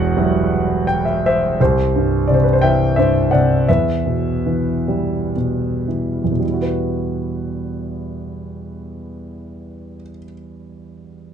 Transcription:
0, 0, Header, 1, 2, 480
1, 0, Start_track
1, 0, Key_signature, 1, "minor"
1, 0, Tempo, 699301
1, 1095, Time_signature, 3, 2, 24, 8
1, 2525, Tempo, 774194
1, 3005, Tempo, 903614
1, 3485, Tempo, 1075269
1, 3965, Tempo, 1123596
1, 4925, Tempo, 1071429
1, 6116, End_track
2, 0, Start_track
2, 0, Title_t, "Grand piano"
2, 0, Program_c, 0, 0
2, 0, Control_c, 0, 64, 127
2, 0, Note_on_c, 0, 28, 60
2, 0, Note_on_c, 0, 40, 69
2, 0, Note_on_c, 0, 66, 59
2, 0, Note_on_c, 0, 71, 60
2, 0, Note_on_c, 0, 78, 77
2, 114, Note_on_c, 0, 54, 47
2, 115, Note_on_c, 0, 55, 41
2, 120, Note_on_c, 0, 64, 46
2, 576, Note_off_c, 0, 78, 0
2, 585, Note_off_c, 0, 54, 0
2, 585, Note_off_c, 0, 66, 0
2, 585, Note_off_c, 0, 71, 0
2, 586, Note_off_c, 0, 55, 0
2, 588, Note_off_c, 0, 64, 0
2, 599, Note_on_c, 0, 79, 66
2, 716, Note_off_c, 0, 79, 0
2, 723, Note_on_c, 0, 76, 55
2, 856, Note_off_c, 0, 76, 0
2, 866, Note_on_c, 0, 72, 54
2, 867, Note_on_c, 0, 76, 70
2, 1066, Note_off_c, 0, 28, 0
2, 1067, Note_off_c, 0, 40, 0
2, 1087, Note_off_c, 0, 72, 0
2, 1101, Note_on_c, 0, 36, 49
2, 1106, Control_c, 0, 64, 0
2, 1108, Note_on_c, 0, 72, 55
2, 1111, Note_off_c, 0, 76, 0
2, 1116, Note_on_c, 0, 67, 44
2, 1207, Control_c, 0, 64, 127
2, 1344, Note_on_c, 0, 43, 35
2, 1537, Note_off_c, 0, 67, 0
2, 1562, Note_on_c, 0, 74, 54
2, 1574, Note_off_c, 0, 72, 0
2, 1577, Note_on_c, 0, 48, 37
2, 1607, Note_on_c, 0, 72, 50
2, 1620, Note_off_c, 0, 74, 0
2, 1669, Note_on_c, 0, 71, 50
2, 1674, Note_off_c, 0, 72, 0
2, 1736, Note_off_c, 0, 71, 0
2, 1737, Note_on_c, 0, 72, 50
2, 1795, Note_on_c, 0, 79, 72
2, 1801, Note_off_c, 0, 72, 0
2, 1804, Note_on_c, 0, 76, 58
2, 1809, Note_on_c, 0, 52, 40
2, 2023, Note_off_c, 0, 76, 0
2, 2033, Note_on_c, 0, 76, 68
2, 2036, Note_off_c, 0, 43, 0
2, 2042, Note_off_c, 0, 79, 0
2, 2046, Note_on_c, 0, 43, 42
2, 2048, Note_on_c, 0, 72, 51
2, 2267, Note_off_c, 0, 72, 0
2, 2272, Note_on_c, 0, 78, 63
2, 2275, Note_off_c, 0, 48, 0
2, 2283, Note_off_c, 0, 76, 0
2, 2284, Note_on_c, 0, 74, 55
2, 2285, Note_on_c, 0, 48, 41
2, 2501, Note_off_c, 0, 36, 0
2, 2507, Note_off_c, 0, 52, 0
2, 2511, Note_off_c, 0, 74, 0
2, 2514, Note_off_c, 0, 43, 0
2, 2521, Note_off_c, 0, 48, 0
2, 2529, Note_off_c, 0, 78, 0
2, 2529, Note_on_c, 0, 76, 65
2, 2534, Control_c, 0, 64, 0
2, 2534, Note_on_c, 0, 40, 49
2, 2536, Note_on_c, 0, 71, 46
2, 2639, Control_c, 0, 64, 127
2, 2761, Note_on_c, 0, 47, 38
2, 3010, Note_on_c, 0, 52, 42
2, 3232, Note_on_c, 0, 55, 37
2, 3466, Note_off_c, 0, 76, 0
2, 3469, Note_off_c, 0, 71, 0
2, 3481, Note_off_c, 0, 47, 0
2, 3488, Note_on_c, 0, 47, 35
2, 3712, Note_off_c, 0, 52, 0
2, 3719, Note_on_c, 0, 52, 28
2, 3874, Note_off_c, 0, 40, 0
2, 3880, Note_on_c, 0, 40, 32
2, 3906, Note_off_c, 0, 47, 0
2, 3913, Note_on_c, 0, 47, 30
2, 3942, Note_off_c, 0, 55, 0
2, 3948, Note_on_c, 0, 55, 28
2, 3959, Note_off_c, 0, 52, 0
2, 3970, Control_c, 0, 64, 0
2, 3981, Note_on_c, 0, 64, 29
2, 4010, Note_on_c, 0, 66, 32
2, 4033, Control_c, 0, 64, 127
2, 4044, Note_on_c, 0, 71, 36
2, 5493, Note_off_c, 0, 40, 0
2, 5526, Note_off_c, 0, 47, 0
2, 5562, Note_off_c, 0, 55, 0
2, 5595, Note_off_c, 0, 64, 0
2, 5626, Note_off_c, 0, 66, 0
2, 5661, Note_off_c, 0, 71, 0
2, 6116, End_track
0, 0, End_of_file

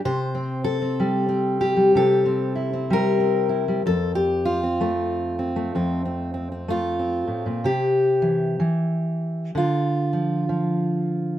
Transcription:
0, 0, Header, 1, 2, 480
1, 0, Start_track
1, 0, Tempo, 950872
1, 19, Time_signature, 4, 2, 24, 8
1, 5749, End_track
2, 0, Start_track
2, 0, Title_t, "Steel-string acoustic guitar"
2, 0, Program_c, 0, 25
2, 26, Note_on_c, 0, 48, 73
2, 27, Note_on_c, 0, 72, 93
2, 174, Note_on_c, 0, 60, 41
2, 316, Note_off_c, 0, 72, 0
2, 325, Note_on_c, 0, 69, 98
2, 411, Note_off_c, 0, 60, 0
2, 413, Note_on_c, 0, 60, 43
2, 503, Note_on_c, 0, 55, 67
2, 647, Note_off_c, 0, 60, 0
2, 649, Note_on_c, 0, 60, 45
2, 811, Note_on_c, 0, 67, 81
2, 885, Note_off_c, 0, 55, 0
2, 891, Note_on_c, 0, 55, 54
2, 979, Note_off_c, 0, 48, 0
2, 985, Note_on_c, 0, 48, 62
2, 986, Note_off_c, 0, 69, 0
2, 992, Note_on_c, 0, 69, 82
2, 1137, Note_off_c, 0, 60, 0
2, 1139, Note_on_c, 0, 60, 42
2, 1283, Note_off_c, 0, 67, 0
2, 1289, Note_on_c, 0, 64, 41
2, 1378, Note_off_c, 0, 60, 0
2, 1380, Note_on_c, 0, 60, 43
2, 1460, Note_off_c, 0, 55, 0
2, 1466, Note_on_c, 0, 55, 63
2, 1468, Note_off_c, 0, 69, 0
2, 1479, Note_on_c, 0, 70, 94
2, 1613, Note_off_c, 0, 60, 0
2, 1615, Note_on_c, 0, 60, 39
2, 1757, Note_off_c, 0, 64, 0
2, 1763, Note_on_c, 0, 64, 42
2, 1851, Note_off_c, 0, 55, 0
2, 1858, Note_on_c, 0, 55, 51
2, 1923, Note_off_c, 0, 48, 0
2, 1925, Note_off_c, 0, 55, 0
2, 1925, Note_off_c, 0, 64, 0
2, 1947, Note_on_c, 0, 41, 69
2, 1952, Note_off_c, 0, 70, 0
2, 1952, Note_on_c, 0, 69, 86
2, 2094, Note_off_c, 0, 69, 0
2, 2096, Note_on_c, 0, 67, 84
2, 2248, Note_on_c, 0, 65, 72
2, 2333, Note_off_c, 0, 67, 0
2, 2339, Note_off_c, 0, 60, 0
2, 2339, Note_on_c, 0, 60, 40
2, 2426, Note_on_c, 0, 57, 66
2, 2714, Note_off_c, 0, 60, 0
2, 2720, Note_on_c, 0, 60, 42
2, 2801, Note_off_c, 0, 57, 0
2, 2807, Note_on_c, 0, 57, 55
2, 2895, Note_off_c, 0, 41, 0
2, 2899, Note_off_c, 0, 60, 0
2, 2901, Note_on_c, 0, 41, 61
2, 2905, Note_on_c, 0, 60, 45
2, 3050, Note_off_c, 0, 60, 0
2, 3056, Note_on_c, 0, 60, 43
2, 3194, Note_off_c, 0, 60, 0
2, 3200, Note_on_c, 0, 60, 42
2, 3284, Note_off_c, 0, 60, 0
2, 3290, Note_on_c, 0, 60, 42
2, 3368, Note_off_c, 0, 57, 0
2, 3374, Note_on_c, 0, 57, 56
2, 3378, Note_off_c, 0, 65, 0
2, 3384, Note_on_c, 0, 65, 79
2, 3524, Note_off_c, 0, 60, 0
2, 3530, Note_on_c, 0, 60, 41
2, 3669, Note_off_c, 0, 41, 0
2, 3672, Note_on_c, 0, 45, 51
2, 3765, Note_on_c, 0, 46, 55
2, 3767, Note_off_c, 0, 45, 0
2, 3836, Note_off_c, 0, 57, 0
2, 3858, Note_on_c, 0, 48, 68
2, 3861, Note_off_c, 0, 46, 0
2, 3862, Note_off_c, 0, 60, 0
2, 3864, Note_off_c, 0, 65, 0
2, 3864, Note_on_c, 0, 67, 79
2, 4149, Note_on_c, 0, 52, 49
2, 4333, Note_off_c, 0, 52, 0
2, 4339, Note_on_c, 0, 52, 62
2, 4340, Note_off_c, 0, 48, 0
2, 4798, Note_off_c, 0, 52, 0
2, 4820, Note_on_c, 0, 50, 65
2, 4822, Note_off_c, 0, 67, 0
2, 4833, Note_on_c, 0, 65, 78
2, 5113, Note_on_c, 0, 53, 43
2, 5289, Note_off_c, 0, 53, 0
2, 5295, Note_on_c, 0, 53, 62
2, 5749, Note_off_c, 0, 50, 0
2, 5749, Note_off_c, 0, 53, 0
2, 5749, Note_off_c, 0, 65, 0
2, 5749, End_track
0, 0, End_of_file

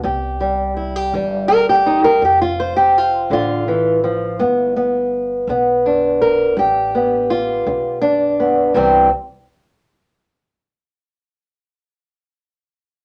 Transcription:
0, 0, Header, 1, 3, 480
1, 0, Start_track
1, 0, Tempo, 725777
1, 27, Time_signature, 12, 3, 24, 8
1, 8629, End_track
2, 0, Start_track
2, 0, Title_t, "Steel-string acoustic guitar"
2, 0, Program_c, 0, 25
2, 23, Note_on_c, 0, 48, 71
2, 31, Note_on_c, 0, 67, 46
2, 268, Note_on_c, 0, 55, 48
2, 457, Note_off_c, 0, 48, 0
2, 504, Note_off_c, 0, 67, 0
2, 507, Note_on_c, 0, 64, 45
2, 634, Note_off_c, 0, 64, 0
2, 634, Note_on_c, 0, 67, 41
2, 748, Note_off_c, 0, 55, 0
2, 755, Note_on_c, 0, 52, 67
2, 760, Note_on_c, 0, 55, 46
2, 977, Note_off_c, 0, 67, 0
2, 980, Note_on_c, 0, 70, 110
2, 1104, Note_off_c, 0, 70, 0
2, 1120, Note_on_c, 0, 67, 96
2, 1184, Note_off_c, 0, 52, 0
2, 1232, Note_on_c, 0, 63, 77
2, 1349, Note_off_c, 0, 67, 0
2, 1350, Note_off_c, 0, 63, 0
2, 1351, Note_on_c, 0, 70, 98
2, 1468, Note_on_c, 0, 53, 78
2, 1469, Note_off_c, 0, 70, 0
2, 1472, Note_off_c, 0, 55, 0
2, 1486, Note_on_c, 0, 67, 74
2, 1594, Note_off_c, 0, 67, 0
2, 1597, Note_on_c, 0, 65, 83
2, 1717, Note_on_c, 0, 72, 78
2, 1826, Note_off_c, 0, 65, 0
2, 1828, Note_on_c, 0, 67, 83
2, 1900, Note_off_c, 0, 53, 0
2, 1969, Note_off_c, 0, 67, 0
2, 1969, Note_on_c, 0, 65, 91
2, 2188, Note_on_c, 0, 50, 66
2, 2195, Note_off_c, 0, 65, 0
2, 2203, Note_on_c, 0, 65, 99
2, 2312, Note_off_c, 0, 72, 0
2, 2428, Note_off_c, 0, 50, 0
2, 2433, Note_on_c, 0, 52, 60
2, 2667, Note_off_c, 0, 52, 0
2, 2670, Note_on_c, 0, 53, 54
2, 2906, Note_on_c, 0, 43, 74
2, 2908, Note_on_c, 0, 59, 50
2, 2909, Note_off_c, 0, 53, 0
2, 3143, Note_off_c, 0, 59, 0
2, 3151, Note_on_c, 0, 59, 47
2, 3339, Note_off_c, 0, 43, 0
2, 3630, Note_off_c, 0, 59, 0
2, 3632, Note_on_c, 0, 50, 56
2, 3637, Note_on_c, 0, 59, 48
2, 3873, Note_off_c, 0, 65, 0
2, 3875, Note_on_c, 0, 62, 46
2, 4062, Note_off_c, 0, 50, 0
2, 4111, Note_on_c, 0, 70, 76
2, 4343, Note_on_c, 0, 43, 77
2, 4349, Note_off_c, 0, 70, 0
2, 4357, Note_on_c, 0, 67, 77
2, 4588, Note_off_c, 0, 59, 0
2, 4595, Note_on_c, 0, 59, 43
2, 4778, Note_off_c, 0, 43, 0
2, 4827, Note_off_c, 0, 62, 0
2, 4830, Note_on_c, 0, 65, 88
2, 5070, Note_on_c, 0, 50, 64
2, 5298, Note_off_c, 0, 65, 0
2, 5301, Note_on_c, 0, 62, 83
2, 5313, Note_off_c, 0, 67, 0
2, 5502, Note_off_c, 0, 50, 0
2, 5546, Note_off_c, 0, 59, 0
2, 5554, Note_on_c, 0, 59, 41
2, 5763, Note_off_c, 0, 59, 0
2, 5783, Note_on_c, 0, 48, 60
2, 5785, Note_off_c, 0, 62, 0
2, 5787, Note_on_c, 0, 52, 56
2, 5791, Note_on_c, 0, 55, 57
2, 5796, Note_on_c, 0, 60, 78
2, 6002, Note_off_c, 0, 48, 0
2, 6004, Note_off_c, 0, 52, 0
2, 6006, Note_off_c, 0, 55, 0
2, 6016, Note_off_c, 0, 60, 0
2, 8629, End_track
3, 0, Start_track
3, 0, Title_t, "Upright bass"
3, 0, Program_c, 1, 32
3, 29, Note_on_c, 1, 36, 92
3, 726, Note_off_c, 1, 36, 0
3, 751, Note_on_c, 1, 31, 90
3, 1447, Note_off_c, 1, 31, 0
3, 1470, Note_on_c, 1, 29, 83
3, 2167, Note_off_c, 1, 29, 0
3, 2183, Note_on_c, 1, 33, 89
3, 2884, Note_off_c, 1, 33, 0
3, 2910, Note_on_c, 1, 31, 89
3, 3607, Note_off_c, 1, 31, 0
3, 3620, Note_on_c, 1, 35, 87
3, 4323, Note_off_c, 1, 35, 0
3, 4347, Note_on_c, 1, 33, 79
3, 5046, Note_off_c, 1, 33, 0
3, 5069, Note_on_c, 1, 35, 78
3, 5767, Note_off_c, 1, 35, 0
3, 5782, Note_on_c, 1, 36, 86
3, 6008, Note_off_c, 1, 36, 0
3, 8629, End_track
0, 0, End_of_file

